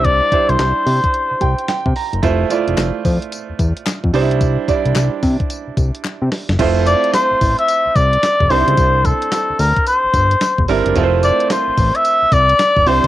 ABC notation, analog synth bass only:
X:1
M:4/4
L:1/16
Q:"Swing 16ths" 1/4=110
K:F
V:1 name="Analog synth bass" clef=bass
C,,2 z C,, C,, z C, z2 C,, C,, z2 C, z _G,,, | F,,,2 z F,,, F,,, z F,, z2 E,, E,, z2 F,, C,,2- | C,,2 z C,, C,, z C, z2 C,, C,, z2 C, z _G,,, | F,,,3 z2 A,,, A,,, z2 C,, C,,2 z F,,, C,, _D,, |
C,,3 z2 D,, D,, z2 G,,, G,,,2 z E,,, G,,, _G,,, | F,,,3 z2 A,,, A,,, z2 C,, C,,2 z F,,, C,, _D,, |]